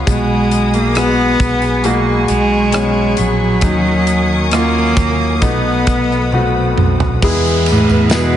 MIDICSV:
0, 0, Header, 1, 8, 480
1, 0, Start_track
1, 0, Tempo, 891530
1, 41, Time_signature, 4, 2, 24, 8
1, 4505, End_track
2, 0, Start_track
2, 0, Title_t, "String section"
2, 0, Program_c, 0, 48
2, 0, Note_on_c, 0, 83, 55
2, 46, Note_on_c, 0, 87, 78
2, 48, Note_on_c, 0, 68, 69
2, 50, Note_on_c, 0, 80, 57
2, 989, Note_off_c, 0, 87, 0
2, 994, Note_on_c, 0, 85, 71
2, 1932, Note_off_c, 0, 83, 0
2, 1937, Note_off_c, 0, 68, 0
2, 1939, Note_off_c, 0, 85, 0
2, 1943, Note_on_c, 0, 87, 79
2, 1945, Note_on_c, 0, 70, 67
2, 1946, Note_on_c, 0, 85, 64
2, 2902, Note_off_c, 0, 80, 0
2, 2905, Note_off_c, 0, 70, 0
2, 2906, Note_off_c, 0, 85, 0
2, 2910, Note_on_c, 0, 69, 67
2, 2913, Note_on_c, 0, 83, 62
2, 2915, Note_on_c, 0, 78, 63
2, 3866, Note_off_c, 0, 87, 0
2, 3876, Note_off_c, 0, 69, 0
2, 3878, Note_off_c, 0, 83, 0
2, 3879, Note_off_c, 0, 78, 0
2, 4505, End_track
3, 0, Start_track
3, 0, Title_t, "Violin section"
3, 0, Program_c, 1, 48
3, 3891, Note_on_c, 1, 71, 104
3, 4505, Note_off_c, 1, 71, 0
3, 4505, End_track
4, 0, Start_track
4, 0, Title_t, "Grand piano"
4, 0, Program_c, 2, 0
4, 0, Control_c, 2, 64, 127
4, 36, Note_on_c, 2, 56, 65
4, 40, Note_on_c, 2, 47, 52
4, 40, Note_on_c, 2, 59, 59
4, 42, Note_on_c, 2, 66, 64
4, 49, Control_c, 2, 64, 0
4, 155, Control_c, 2, 64, 127
4, 491, Note_off_c, 2, 56, 0
4, 493, Note_off_c, 2, 59, 0
4, 494, Note_off_c, 2, 66, 0
4, 518, Note_on_c, 2, 56, 55
4, 521, Note_on_c, 2, 59, 55
4, 521, Note_on_c, 2, 66, 60
4, 734, Note_off_c, 2, 47, 0
4, 972, Note_off_c, 2, 56, 0
4, 973, Note_off_c, 2, 66, 0
4, 974, Note_off_c, 2, 59, 0
4, 995, Note_on_c, 2, 56, 71
4, 997, Note_on_c, 2, 47, 60
4, 1001, Note_on_c, 2, 66, 78
4, 1449, Note_off_c, 2, 56, 0
4, 1450, Note_off_c, 2, 47, 0
4, 1452, Note_off_c, 2, 66, 0
4, 1473, Note_on_c, 2, 56, 67
4, 1473, Note_on_c, 2, 59, 60
4, 1475, Note_on_c, 2, 61, 72
4, 1928, Note_off_c, 2, 56, 0
4, 1928, Note_off_c, 2, 59, 0
4, 1929, Note_off_c, 2, 61, 0
4, 1950, Note_on_c, 2, 54, 62
4, 1952, Note_on_c, 2, 61, 58
4, 1953, Note_on_c, 2, 51, 57
4, 1958, Note_on_c, 2, 63, 73
4, 1959, Control_c, 2, 64, 0
4, 2057, Control_c, 2, 64, 127
4, 2410, Note_off_c, 2, 54, 0
4, 2411, Note_off_c, 2, 61, 0
4, 2413, Note_off_c, 2, 63, 0
4, 2435, Note_on_c, 2, 54, 68
4, 2438, Note_on_c, 2, 61, 51
4, 2439, Note_on_c, 2, 65, 68
4, 2655, Note_off_c, 2, 51, 0
4, 2895, Note_off_c, 2, 54, 0
4, 2896, Note_off_c, 2, 61, 0
4, 2896, Note_off_c, 2, 65, 0
4, 2912, Note_on_c, 2, 57, 72
4, 2915, Note_on_c, 2, 59, 68
4, 2916, Note_on_c, 2, 63, 73
4, 2918, Note_on_c, 2, 47, 60
4, 2924, Control_c, 2, 64, 0
4, 3036, Control_c, 2, 64, 127
4, 3379, Note_off_c, 2, 57, 0
4, 3381, Note_off_c, 2, 59, 0
4, 3381, Note_off_c, 2, 63, 0
4, 3411, Note_on_c, 2, 57, 70
4, 3412, Note_on_c, 2, 59, 63
4, 3415, Note_on_c, 2, 66, 79
4, 3629, Note_off_c, 2, 47, 0
4, 3869, Note_off_c, 2, 57, 0
4, 3869, Note_off_c, 2, 59, 0
4, 3871, Note_off_c, 2, 66, 0
4, 3894, Note_on_c, 2, 56, 87
4, 3895, Note_on_c, 2, 52, 69
4, 3895, Note_on_c, 2, 59, 71
4, 3896, Control_c, 2, 64, 0
4, 3898, Note_on_c, 2, 68, 94
4, 3899, Note_on_c, 2, 64, 75
4, 3988, Control_c, 2, 64, 127
4, 4343, Note_off_c, 2, 56, 0
4, 4344, Note_off_c, 2, 59, 0
4, 4345, Note_off_c, 2, 68, 0
4, 4346, Note_off_c, 2, 64, 0
4, 4375, Note_on_c, 2, 56, 69
4, 4375, Note_on_c, 2, 59, 54
4, 4376, Note_on_c, 2, 68, 75
4, 4377, Note_on_c, 2, 64, 57
4, 4505, Note_off_c, 2, 52, 0
4, 4505, Note_off_c, 2, 56, 0
4, 4505, Note_off_c, 2, 59, 0
4, 4505, Note_off_c, 2, 64, 0
4, 4505, Note_off_c, 2, 68, 0
4, 4505, End_track
5, 0, Start_track
5, 0, Title_t, "Cello"
5, 0, Program_c, 3, 42
5, 47, Note_on_c, 3, 56, 85
5, 399, Note_on_c, 3, 58, 84
5, 407, Note_off_c, 3, 56, 0
5, 513, Note_on_c, 3, 59, 105
5, 521, Note_off_c, 3, 58, 0
5, 991, Note_on_c, 3, 58, 86
5, 999, Note_off_c, 3, 59, 0
5, 1223, Note_off_c, 3, 58, 0
5, 1226, Note_on_c, 3, 56, 96
5, 1707, Note_on_c, 3, 54, 98
5, 1715, Note_off_c, 3, 56, 0
5, 2426, Note_off_c, 3, 54, 0
5, 2429, Note_on_c, 3, 58, 93
5, 2918, Note_on_c, 3, 59, 82
5, 2926, Note_off_c, 3, 58, 0
5, 3650, Note_off_c, 3, 59, 0
5, 4139, Note_on_c, 3, 45, 95
5, 4364, Note_on_c, 3, 47, 101
5, 4372, Note_off_c, 3, 45, 0
5, 4505, Note_off_c, 3, 47, 0
5, 4505, End_track
6, 0, Start_track
6, 0, Title_t, "Fretless electric bass"
6, 0, Program_c, 4, 35
6, 38, Note_on_c, 4, 35, 81
6, 733, Note_off_c, 4, 35, 0
6, 751, Note_on_c, 4, 35, 82
6, 1210, Note_off_c, 4, 35, 0
6, 1231, Note_on_c, 4, 35, 90
6, 1689, Note_off_c, 4, 35, 0
6, 1713, Note_on_c, 4, 34, 85
6, 1936, Note_off_c, 4, 34, 0
6, 1952, Note_on_c, 4, 39, 90
6, 2655, Note_off_c, 4, 39, 0
6, 2676, Note_on_c, 4, 39, 87
6, 2901, Note_off_c, 4, 39, 0
6, 2919, Note_on_c, 4, 35, 98
6, 3145, Note_off_c, 4, 35, 0
6, 3164, Note_on_c, 4, 35, 87
6, 3630, Note_off_c, 4, 35, 0
6, 3657, Note_on_c, 4, 35, 83
6, 3877, Note_off_c, 4, 35, 0
6, 3891, Note_on_c, 4, 40, 88
6, 4225, Note_off_c, 4, 40, 0
6, 4251, Note_on_c, 4, 40, 97
6, 4505, Note_off_c, 4, 40, 0
6, 4505, End_track
7, 0, Start_track
7, 0, Title_t, "Downlifter"
7, 0, Program_c, 5, 103
7, 3894, Note_on_c, 5, 60, 80
7, 4505, Note_off_c, 5, 60, 0
7, 4505, End_track
8, 0, Start_track
8, 0, Title_t, "Drums"
8, 38, Note_on_c, 9, 36, 83
8, 38, Note_on_c, 9, 42, 82
8, 92, Note_off_c, 9, 36, 0
8, 92, Note_off_c, 9, 42, 0
8, 277, Note_on_c, 9, 42, 77
8, 331, Note_off_c, 9, 42, 0
8, 397, Note_on_c, 9, 42, 43
8, 451, Note_off_c, 9, 42, 0
8, 513, Note_on_c, 9, 42, 70
8, 521, Note_on_c, 9, 37, 81
8, 567, Note_off_c, 9, 42, 0
8, 575, Note_off_c, 9, 37, 0
8, 753, Note_on_c, 9, 36, 85
8, 753, Note_on_c, 9, 42, 72
8, 807, Note_off_c, 9, 36, 0
8, 807, Note_off_c, 9, 42, 0
8, 871, Note_on_c, 9, 42, 36
8, 925, Note_off_c, 9, 42, 0
8, 990, Note_on_c, 9, 42, 64
8, 1044, Note_off_c, 9, 42, 0
8, 1229, Note_on_c, 9, 42, 62
8, 1283, Note_off_c, 9, 42, 0
8, 1467, Note_on_c, 9, 42, 73
8, 1477, Note_on_c, 9, 37, 100
8, 1521, Note_off_c, 9, 42, 0
8, 1531, Note_off_c, 9, 37, 0
8, 1706, Note_on_c, 9, 42, 73
8, 1760, Note_off_c, 9, 42, 0
8, 1946, Note_on_c, 9, 42, 80
8, 1950, Note_on_c, 9, 36, 87
8, 1999, Note_off_c, 9, 42, 0
8, 2004, Note_off_c, 9, 36, 0
8, 2191, Note_on_c, 9, 42, 78
8, 2245, Note_off_c, 9, 42, 0
8, 2431, Note_on_c, 9, 42, 72
8, 2439, Note_on_c, 9, 37, 92
8, 2485, Note_off_c, 9, 42, 0
8, 2493, Note_off_c, 9, 37, 0
8, 2674, Note_on_c, 9, 42, 82
8, 2675, Note_on_c, 9, 36, 82
8, 2728, Note_off_c, 9, 36, 0
8, 2728, Note_off_c, 9, 42, 0
8, 2916, Note_on_c, 9, 42, 74
8, 2918, Note_on_c, 9, 36, 76
8, 2970, Note_off_c, 9, 42, 0
8, 2972, Note_off_c, 9, 36, 0
8, 3160, Note_on_c, 9, 42, 66
8, 3161, Note_on_c, 9, 36, 80
8, 3213, Note_off_c, 9, 42, 0
8, 3215, Note_off_c, 9, 36, 0
8, 3291, Note_on_c, 9, 37, 34
8, 3345, Note_off_c, 9, 37, 0
8, 3405, Note_on_c, 9, 48, 51
8, 3459, Note_off_c, 9, 48, 0
8, 3648, Note_on_c, 9, 45, 76
8, 3702, Note_off_c, 9, 45, 0
8, 3770, Note_on_c, 9, 43, 85
8, 3824, Note_off_c, 9, 43, 0
8, 3889, Note_on_c, 9, 49, 97
8, 3890, Note_on_c, 9, 36, 97
8, 3890, Note_on_c, 9, 54, 54
8, 3943, Note_off_c, 9, 36, 0
8, 3943, Note_off_c, 9, 49, 0
8, 3944, Note_off_c, 9, 54, 0
8, 4012, Note_on_c, 9, 54, 27
8, 4066, Note_off_c, 9, 54, 0
8, 4125, Note_on_c, 9, 51, 76
8, 4134, Note_on_c, 9, 54, 51
8, 4179, Note_off_c, 9, 51, 0
8, 4188, Note_off_c, 9, 54, 0
8, 4250, Note_on_c, 9, 54, 33
8, 4304, Note_off_c, 9, 54, 0
8, 4359, Note_on_c, 9, 51, 74
8, 4367, Note_on_c, 9, 38, 115
8, 4367, Note_on_c, 9, 54, 89
8, 4412, Note_off_c, 9, 51, 0
8, 4421, Note_off_c, 9, 38, 0
8, 4421, Note_off_c, 9, 54, 0
8, 4505, End_track
0, 0, End_of_file